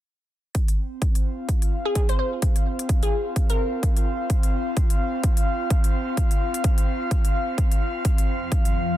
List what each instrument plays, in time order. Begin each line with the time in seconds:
0.55 analog synth pad C4, kick, closed hi-hat
0.68 closed hi-hat
1.01 analog synth pad F4, kick, closed hi-hat
1.15 closed hi-hat
1.34 analog synth pad F5
1.49 kick, closed hi-hat
1.62 closed hi-hat
1.85 synth pluck G#4
1.95 synth pluck G#4, kick, closed hi-hat
2.09 synth pluck C5, closed hi-hat
2.19 synth pluck C5
2.42 kick, closed hi-hat
2.56 closed hi-hat
2.79 closed hi-hat
2.89 kick, closed hi-hat
3.03 synth pluck G#4, closed hi-hat
3.36 kick, closed hi-hat
3.50 synth pluck A#4, closed hi-hat
3.83 kick, closed hi-hat
3.97 closed hi-hat
4.30 kick, closed hi-hat
4.43 closed hi-hat
4.77 kick, closed hi-hat
4.90 closed hi-hat
5.24 kick, closed hi-hat
5.37 closed hi-hat
5.70 kick, closed hi-hat
5.84 closed hi-hat
6.17 kick, closed hi-hat
6.31 closed hi-hat
6.54 closed hi-hat
6.64 kick, closed hi-hat
6.78 closed hi-hat
7.11 kick, closed hi-hat
7.25 closed hi-hat
7.58 kick, closed hi-hat
7.72 closed hi-hat
8.05 ambient pad F3 C4 C5 F5, kick, closed hi-hat
8.18 closed hi-hat
8.52 kick, closed hi-hat
8.65 closed hi-hat